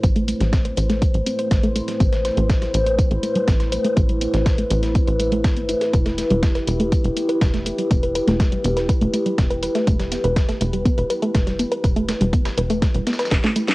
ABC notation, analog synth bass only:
X:1
M:4/4
L:1/16
Q:1/4=122
K:Am
V:1 name="Analog synth bass" clef=bass
A,,,2 z A,,,2 z A,,,2 z A,,, z2 A,,,2 z2 | A,,,2 z A,,,2 z A,,,2 z A,,, z2 A,,,2 z2 | A,,,2 z A,,,2 z A,,,2 z A,,,3 G,,,2 z2 | E,,,2 z E,,,2 z E,,,2 z E,,, z2 E,,,2 z2 |
E,,,2 z E,,,2 z E,,,2 z E,,, z2 E,,,2 z2 | E,,,2 z E,,,2 z E,,,2 z E,,, z2 E,,,2 z2 | E,,,2 z E,,,2 z E,,,2 z E,,, z2 E,,, z3 |]